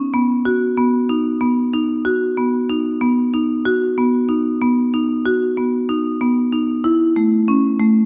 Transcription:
0.14 B3
0.45 F#4
0.77 B3
1.09 D#4
1.41 B3
1.73 D#4
2.05 F#4
2.37 B3
2.70 D#4
3.01 B3
3.34 D#4
3.65 F#4
3.98 B3
4.29 D#4
4.62 B3
4.94 D#4
5.26 F#4
5.57 B3
5.89 D#4
6.21 B3
6.52 D#4
6.84 E4
7.16 A3
7.48 C#4
7.80 A3

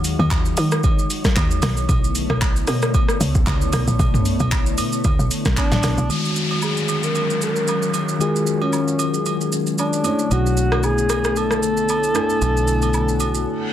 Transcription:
Already playing: D#2 D#3 F#3 G#3 D#4 C#5
0.04 open hi-hat, shaker
0.19 D#2, high agogo
0.30 kick, clap, low woodblock, shaker
0.46 shaker
0.57 D#3, open hi-hat, high agogo, shaker
0.72 cross-stick, shaker
0.83 kick, high agogo, shaker
0.99 shaker
1.10 open hi-hat, shaker
1.24 kick, cross-stick, snare, shaker
1.36 D#2, kick, clap, high agogo, low woodblock, shaker
1.51 shaker
1.62 B1 D3 A3 B3 E4, cross-stick, snare, open hi-hat, high agogo, shaker
1.77 shaker
1.89 B1, kick, high agogo, shaker
2.04 shaker
2.15 open hi-hat, shaker
2.30 B1, cross-stick, high agogo
2.41 kick, clap, low woodblock, shaker
2.56 shaker
2.67 B2, cross-stick, open hi-hat, high agogo, shaker
2.82 cross-stick, shaker
2.94 kick, high agogo, shaker
3.08 cross-stick, shaker
3.21 C#2, open hi-hat, shaker
3.35 kick, shaker
3.46 C#2, kick, clap, high agogo, low woodblock, shaker
3.61 shaker
3.73 B1, cross-stick, open hi-hat, high agogo, shaker
3.88 A#1, shaker
3.99 B1, kick, high agogo, shaker
4.14 mid tom, shaker
4.25 open hi-hat, shaker
4.40 B1, high agogo, shaker
4.51 kick, clap, low woodblock, shaker
4.66 shaker
4.78 B2, open hi-hat, high agogo, shaker
4.92 shaker
5.04 D2, kick, high agogo, shaker
5.19 B1, shaker
5.31 open hi-hat, shaker
5.45 B1, kick, cross-stick, snare, shaker
5.57 D4, kick, clap, high agogo, low woodblock, shaker
5.72 A1, snare, shaker
5.83 B1, cross-stick, snare, open hi-hat, high agogo, shaker
5.98 B1, shaker
6.09 D#3 F#3 G#3 C#4 F#4 C#5 F5, downlifter, high agogo, shaker
6.25 shaker
6.36 shaker
6.51 high agogo
6.62 G#4, low woodblock, shaker
6.77 shaker
6.88 high agogo, shaker
7.03 A#4, shaker
7.15 high agogo, shaker
7.30 shaker
7.42 A#4, shaker
7.56 shaker
7.68 high agogo, low woodblock, shaker
7.82 shaker
7.94 high agogo, shaker
8.09 shaker
8.19 D#3 G#3 F4 F#4 G#4 A#4, high agogo, shaker
8.36 shaker
8.47 shaker
8.62 C#4, high agogo
8.73 low woodblock, shaker
8.88 shaker
8.99 high agogo, shaker
9.14 shaker
9.26 high agogo, shaker
9.41 shaker
9.52 shaker
9.67 shaker
9.78 D4, high agogo, low woodblock, shaker
9.93 shaker
10.04 D3 A3 B3 C#4 E4 C#5, high agogo, shaker
10.11 D4
10.19 shaker
10.31 B1 F#4, high agogo, shaker
10.46 shaker
10.57 shaker
10.72 cross-stick, high agogo
10.83 G#4, low woodblock, shaker
10.98 shaker
11.09 cross-stick, high agogo, shaker
11.24 cross-stick, shaker
11.36 A4, high agogo, shaker
11.51 cross-stick, shaker
11.63 shaker
11.77 shaker
11.89 high agogo, low woodblock, shaker
12.03 shaker
12.14 A3 D4 E4 F#4 G#5, cross-stick, high agogo, shaker
12.30 shaker
12.42 B1, high agogo, shaker
12.57 shaker
12.68 shaker
12.82 high agogo, shaker
12.94 low woodblock, shaker
13.09 shaker
13.20 high agogo, shaker
13.35 shaker
13.47 reverse cymbal

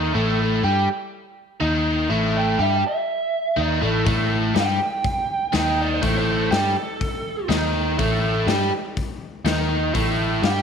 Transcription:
Already playing: D#2 D#3 D#4 A4
0.14 A1 A2 A3
0.63 G2 G3 G4
1.60 D#2 D#3 D#4
2.10 A1 A2 A3
2.37 G5
2.59 G2 G3 G4 E5
2.74 A5
2.87 E5
3.56 D#2 D#3 D#4 D5
3.81 A1 A2 A3
3.85 A4
4.05 A1 A2 A3, kick, open hi-hat
4.54 G2 G3 G4, snare, open hi-hat
4.59 G5
5.04 kick, open hi-hat
5.52 D#2 D#3 D#4, snare, open hi-hat
5.57 G5
5.81 D5
5.94 C5
6.01 A1 A2 A3, kick, open hi-hat
6.18 C5
6.50 G2 G3 G4, snare, open hi-hat
6.55 A4
7.01 kick, open hi-hat
7.49 D#2 D#3 D#4, snare, open hi-hat
7.98 A1 A2 A3, kick, open hi-hat
8.46 G2 G3 G4, snare, open hi-hat
8.97 kick, open hi-hat
9.44 D#2 D#3 D#4, snare, open hi-hat
9.94 A1 A2 A3, kick, open hi-hat
10.42 G2 G3 G4 G5, snare, open hi-hat

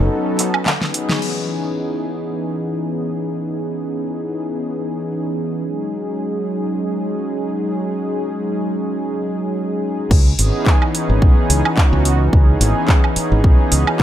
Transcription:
0.10 F#3 B3 C#4 D#4 A4
0.39 clap, open hi-hat
0.54 high woodblock
0.66 snare, clap
0.81 F#3 B3 C#4 D#4 G#4, snare
0.94 open hi-hat
1.09 snare
1.21 E3 B3 C#4 D#4 G#4, crash
5.65 F#3 G#3 C#4 D#4 G#4
10.11 C#2, kick, crash
10.38 G#1 E3 B3 C#4 D#4 G#4, open hi-hat
10.66 kick, clap
10.81 E3 B3 C#4 D#4 G#4, high woodblock
10.95 open hi-hat
11.09 G#1
11.21 B1 E3 B3 C#4 D#4 G#4, kick
11.50 C#2, open hi-hat
11.64 E3 B3 C#4 D#4 F#4, high woodblock
11.77 kick, clap
11.93 C#2
12.05 open hi-hat
12.20 E3 B3 C#4 D#4 G#4
12.33 C#2, kick
12.60 G#1 E3 B3 C#4 D#4 G#4, open hi-hat
12.88 kick, clap
13.03 E3 B3 C#4 D#4 G#4, high woodblock
13.16 muted fingered electric bass stroke, open hi-hat
13.32 G#1
13.44 B1 E3 B3 C#4 D#4 G#4, kick
13.72 C#2, open hi-hat
13.87 E3 B3 C#4 D#4 F#4, high woodblock
14.00 kick

